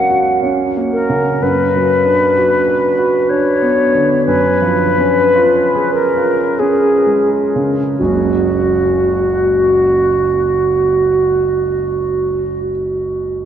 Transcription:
0.00 1.37 F#2 soft
0.00 1.43 F#3 soft
0.00 0.43 C#4 soft
0.00 0.10 F#4 soft
0.00 0.28 A#4 soft
0.00 0.38 F#5 soft
0.10 0.62 F#4 soft
0.43 0.95 C#4 soft
0.76 1.29 A#3 soft
0.92 1.44 A#4 soft
1.09 1.41 C#3 soft
1.42 4.24 F#2 soft
1.42 3.30 B4 soft
1.75 2.24 F#3 soft
2.05 2.54 D4 soft
2.38 2.86 F#4 soft
2.68 3.17 B4 soft
2.99 3.48 F#4 soft
3.29 3.81 D4 soft
3.29 4.25 C#5 soft
3.62 4.14 B3 soft
3.94 4.28 D3 soft
4.25 7.95 F#2 soft
4.25 5.90 B4 medium
4.62 5.19 F3 soft
4.98 5.58 C#4 soft
5.35 5.99 F4 soft
5.75 6.42 G#4 soft
5.94 6.60 A#4 soft
6.17 6.87 F4 soft
6.59 7.35 C#4 soft
6.59 7.29 G#4 soft
7.07 7.82 G#3 soft
7.55 7.99 C#3 soft
7.98 12.70 F#1 soft
7.98 12.71 C#2 soft
7.98 12.71 F#3 soft
7.98 12.71 A#3 soft
7.98 12.71 C#4 soft
7.98 12.60 F#4 soft
7.98 12.72 F#4 soft

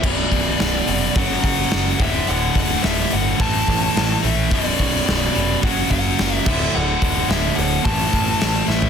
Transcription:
0.02 0.24 B0 loud
0.02 0.85 B1 medium
0.02 0.86 F#2 loud
0.02 kick loud
0.02 crash loud
0.06 0.86 B2 loud
0.06 1.20 D5 loud
0.32 0.52 B0 medium
0.32 kick medium
0.32 open hi-hat medium
0.60 0.80 B0 medium
0.60 snare loud
0.60 open hi-hat medium
0.87 1.08 F1 loud
0.87 1.13 B1 medium
0.87 1.12 F#2 medium
0.87 1.14 B2 medium
0.87 open hi-hat medium
1.14 1.36 F#1 loud
1.14 1.97 F#2 medium
1.14 1.98 C#3 medium
1.14 1.42 F#5 medium
1.14 kick loud
1.14 open hi-hat medium
1.18 1.99 F#3 loud
1.44 1.64 F#1 medium
1.44 2.02 F#5 medium
1.44 kick medium
1.44 open hi-hat medium
1.71 1.93 F#1 medium
1.71 snare loud
1.71 open hi-hat medium
1.98 2.20 D1 loud
1.98 2.80 D2 medium
1.98 2.82 A2 medium
1.98 2.83 D3 loud
1.98 kick loud
1.98 open hi-hat medium
2.02 2.28 E5 loud
2.27 2.48 D1 loud
2.27 2.56 F#5 loud
2.27 open hi-hat medium
2.55 2.76 D1 medium
2.55 2.82 F#5 medium
2.55 kick medium
2.55 open hi-hat medium
2.81 3.04 D1 medium
2.81 3.36 D2 medium
2.81 3.36 A2 medium
2.81 3.12 E5 loud
2.81 snare medium
2.81 open hi-hat medium
2.86 3.39 D3 medium
3.11 3.32 G1 medium
3.11 3.41 F#5 loud
3.11 open hi-hat medium
3.37 3.60 A1 medium
3.37 4.20 A2 medium
3.37 4.21 E3 loud
3.37 4.19 A5 loud
3.37 kick loud
3.37 open hi-hat loud
3.42 4.21 A3 medium
3.68 3.88 A1 loud
3.68 kick medium
3.68 snare soft
3.68 open hi-hat medium
3.96 4.16 A1 medium
3.96 snare loud
3.96 open hi-hat medium
4.22 4.52 A#1 medium
4.22 4.49 A2 medium
4.22 4.49 E3 medium
4.22 4.48 A3 medium
4.22 open hi-hat medium
4.26 4.53 E5 medium
4.49 4.72 B0 loud
4.49 5.32 B1 medium
4.49 5.33 F#2 medium
4.49 5.33 B2 medium
4.49 5.59 D5 medium
4.49 kick medium
4.49 open hi-hat medium
4.79 4.99 B0 medium
4.79 kick medium
4.79 open hi-hat medium
5.08 5.28 B0 medium
5.08 snare loud
5.08 open hi-hat medium
5.34 5.55 F1 medium
5.34 5.61 F#2 medium
5.34 5.60 B2 loud
5.34 open hi-hat medium
5.38 5.61 B1 medium
5.62 5.83 F#1 loud
5.62 6.44 F#2 medium
5.62 6.45 C#3 medium
5.62 6.46 F#3 loud
5.62 5.90 F#5 loud
5.62 kick loud
5.62 open hi-hat medium
5.90 6.10 F#1 medium
5.90 6.35 F#5 loud
5.90 kick medium
5.90 snare soft
5.90 open hi-hat medium
6.19 6.39 F#1 medium
6.19 snare loud
6.19 open hi-hat medium
6.35 6.46 E5 loud
6.45 6.66 D1 medium
6.45 7.27 D2 loud
6.45 7.28 A2 medium
6.45 7.29 D3 loud
6.45 6.72 E5 medium
6.45 kick loud
6.45 crash loud
6.75 6.95 D1 loud
6.75 6.99 F#5 loud
7.01 7.22 D1 medium
7.01 7.27 F#5 medium
7.01 kick medium
7.01 open hi-hat medium
7.28 7.49 D1 medium
7.28 7.82 D2 medium
7.28 7.82 A2 medium
7.28 7.84 D3 medium
7.28 7.55 E5 medium
7.28 snare loud
7.28 open hi-hat medium
7.56 7.77 D1 medium
7.56 7.82 F#5 loud
7.56 open hi-hat medium
7.83 8.05 A1 medium
7.83 8.66 A2 medium
7.83 8.67 E3 loud
7.83 8.65 A3 loud
7.83 8.64 A5 medium
7.83 kick loud
7.83 open hi-hat medium
8.13 8.33 A1 medium
8.13 kick medium
8.13 snare soft
8.13 open hi-hat medium
8.41 8.61 A1 medium
8.41 snare loud
8.41 open hi-hat medium
8.66 8.88 A1 medium
8.66 8.90 E3 medium
8.66 8.90 A3 medium
8.66 8.90 E5 loud
8.66 snare medium
8.71 8.90 A2 medium
8.82 floor tom loud

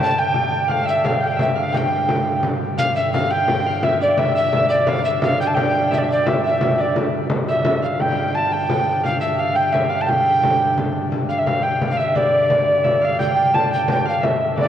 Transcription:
0.00 2.77 G2 medium
0.00 2.77 D3 medium
0.00 0.68 F5 medium
0.00 0.17 G5 medium
0.00 1.44 A5 medium
0.00 0.20 A5 loud
0.18 0.51 G5 medium
0.18 0.73 G5 medium
0.34 frame drum medium
0.51 1.20 G5 medium
0.51 frame drum soft
0.68 0.91 F5 medium
0.68 0.88 F5 medium
0.68 frame drum medium
0.85 1.10 E5 medium
0.85 1.07 E5 medium
0.85 frame drum soft
1.04 1.42 F5 medium
1.04 1.25 F5 medium
1.04 frame drum medium
1.20 1.72 G5 medium
1.20 1.40 G5 medium
1.36 1.61 E5 medium
1.36 frame drum medium
1.41 1.60 E5 medium
1.55 2.77 F5 medium
1.55 1.79 F5 medium
1.55 frame drum soft
1.72 3.28 G5 medium
1.72 frame drum medium
1.77 2.45 G5 medium
2.09 frame drum medium
2.26 frame drum soft
2.43 frame drum medium
2.78 6.94 G2 medium
2.78 6.94 D3 medium
2.78 3.02 F5 medium
2.78 2.95 F5 loud
2.78 frame drum medium
2.96 3.12 E5 medium
2.96 3.20 E5 medium
2.96 frame drum soft
3.12 3.32 F5 medium
3.12 3.66 F5 medium
3.12 frame drum medium
3.31 3.85 G5 loud
3.31 4.88 G5 medium
3.48 frame drum medium
3.66 3.91 F5 medium
3.66 frame drum soft
3.83 4.01 E5 loud
3.83 4.17 E5 medium
3.83 frame drum medium
4.01 4.69 D5 medium
4.01 4.20 D5 medium
4.01 frame drum soft
4.18 4.35 E5 medium
4.18 4.36 E5 loud
4.18 frame drum medium
4.35 4.46 E5 medium
4.35 4.68 E5 medium
4.46 4.56 E5 medium
4.53 4.93 E5 medium
4.53 frame drum medium
4.69 6.08 D5 medium
4.69 4.90 D5 medium
4.69 frame drum soft
4.87 5.11 F5 medium
4.87 5.04 F5 loud
4.87 frame drum medium
5.05 5.21 E5 medium
5.05 5.90 E5 medium
5.05 frame drum soft
5.22 5.39 F5 medium
5.22 frame drum medium
5.40 5.54 G5 medium
5.40 5.49 G5 loud
5.47 5.56 A5 medium
5.54 7.10 G5 medium
5.54 5.92 G5 medium
5.54 frame drum medium
5.75 frame drum soft
5.90 5.99 E5 medium
5.90 frame drum medium
5.98 6.05 D5 medium
5.98 6.25 E5 medium
6.03 6.10 E5 medium
6.08 6.78 D5 medium
6.08 6.30 D5 medium
6.08 frame drum soft
6.25 6.43 E5 medium
6.25 6.44 E5 medium
6.25 frame drum medium
6.44 7.48 E5 medium
6.44 6.82 E5 medium
6.61 frame drum medium
6.78 8.63 D5 medium
6.78 6.97 D5 medium
6.96 11.10 G2 medium
6.96 11.10 D3 medium
6.96 frame drum medium
7.13 frame drum soft
7.30 frame drum loud
7.48 7.80 E5 medium
7.48 7.64 E5 medium
7.65 7.88 E5 medium
7.65 frame drum medium
7.82 9.03 F5 medium
7.82 8.02 F5 medium
7.82 frame drum soft
8.00 8.36 G5 loud
8.00 8.51 G5 medium
8.00 frame drum medium
8.18 frame drum soft
8.34 9.79 A5 medium
8.34 8.54 A5 loud
8.51 9.55 G5 medium
8.51 9.04 G5 loud
8.69 frame drum medium
8.87 frame drum soft
9.03 9.26 F5 medium
9.03 9.20 F5 medium
9.03 frame drum medium
9.21 9.45 E5 medium
9.21 9.40 E5 medium
9.21 frame drum soft
9.39 9.78 F5 medium
9.39 9.58 F5 medium
9.55 10.06 G5 medium
9.55 9.74 G5 medium
9.72 9.96 E5 medium
9.72 9.91 E5 medium
9.72 frame drum medium
9.89 10.03 F5 medium
9.89 11.28 F5 medium
9.89 frame drum soft
10.01 10.11 A5 medium
10.06 11.61 G5 medium
10.06 10.78 G5 loud
10.06 frame drum medium
10.43 frame drum medium
10.60 frame drum soft
10.77 frame drum medium
11.12 14.68 G2 medium
11.12 14.68 D3 medium
11.12 frame drum medium
11.29 11.43 F5 medium
11.29 11.40 F5 medium
11.37 11.52 E5 medium
11.37 11.48 E5 medium
11.46 11.87 F5 medium
11.46 11.64 F5 medium
11.46 frame drum medium
11.62 13.18 G5 medium
11.62 11.89 G5 medium
11.81 frame drum medium
11.87 12.02 F5 medium
11.87 11.98 F5 medium
11.96 12.84 E5 medium
11.96 12.18 E5 medium
11.96 frame drum soft
12.15 14.00 D5 medium
12.15 13.06 D5 medium
12.15 frame drum medium
12.50 frame drum medium
12.84 13.08 E5 medium
12.84 frame drum medium
13.02 14.05 F5 medium
13.02 13.20 F5 medium
13.02 frame drum soft
13.19 13.35 G5 medium
13.19 13.56 G5 loud
13.19 frame drum medium
13.36 13.70 G5 medium
13.54 14.68 A5 medium
13.54 13.71 A5 loud
13.54 frame drum medium
13.71 13.87 G5 medium
13.71 13.88 G5 medium
13.87 14.68 G5 medium
13.87 14.06 G5 medium
13.87 frame drum medium
14.06 14.27 F5 medium
14.06 14.26 F5 medium
14.06 frame drum soft
14.21 14.40 E5 medium
14.21 14.58 E5 medium
14.21 frame drum medium
14.40 14.68 E5 medium
14.40 frame drum soft
14.56 14.68 D5 medium
14.56 frame drum medium
14.60 14.66 D5 medium

